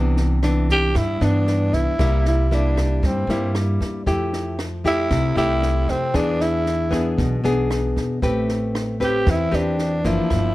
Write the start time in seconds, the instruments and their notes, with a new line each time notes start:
Already playing: upright bass C2, nylon-string guitar C3 E3 B3 D4
0.17 snare
0.43 nylon-string guitar E3 B3 D4, cross-stick, snare
0.69 tenor saxophone G4, kick, snare
0.95 nylon-string guitar G2, upright bass G2, tenor saxophone E4, kick, cross-stick, snare
1.21 upright bass G2, nylon-string guitar E3 B3 D4, tenor saxophone D4, snare
1.47 snare
1.73 upright bass C2, tenor saxophone E4, kick, snare
1.99 upright bass C2, nylon-string guitar C3 G3 A#3 E4, kick, cross-stick, snare
2.25 tenor saxophone E4, snare
2.51 nylon-string guitar G3 A#3 E4, tenor saxophone D4, snare
2.77 kick, cross-stick, snare
3.03 nylon-string guitar G2, upright bass G2, tenor saxophone C4, kick, snare
3.27 upright bass G2, nylon-string guitar G3 A#3 E4, snare
3.55 cross-stick, snare
3.80 upright bass E2, kick, snare
4.06 upright bass F2, nylon-string guitar F3 A3 E4 G4, kick, snare
4.33 snare
4.59 cross-stick, snare
4.84 nylon-string guitar A3 E4 G4, tenor saxophone E4, kick, snare
5.11 upright bass C2, nylon-string guitar C3, kick, cross-stick, snare
5.36 upright bass C2, nylon-string guitar A3 E4 G4, tenor saxophone E4, snare
5.63 snare
5.88 upright bass F2, tenor saxophone C4, kick, snare
6.14 upright bass E2, nylon-string guitar E3 B3 D4 G#4, tenor saxophone D4, kick, cross-stick, snare
6.41 tenor saxophone E4, snare
6.66 snare
6.91 nylon-string guitar B3 D4 G#4, kick, cross-stick, snare
7.18 upright bass B1, nylon-string guitar B2, kick, snare
7.44 upright bass B1, nylon-string guitar B3 D4 G#4, snare
7.71 cross-stick, snare
7.96 upright bass E2, kick, snare
8.22 upright bass A1, nylon-string guitar A3 C4 G4 B4, kick, snare
8.49 snare
8.75 cross-stick, snare
9.00 nylon-string guitar C4 G4 B4, tenor saxophone G4, kick, snare
9.26 upright bass E2, nylon-string guitar E3, tenor saxophone E4, kick, cross-stick, snare
9.51 upright bass E2, nylon-string guitar C4 G4 B4, tenor saxophone D4, snare
9.79 snare
10.04 upright bass F#1, nylon-string guitar F3 A#3 D4, tenor saxophone E4, kick, snare
10.30 upright bass G1, nylon-string guitar G2, kick, cross-stick, snare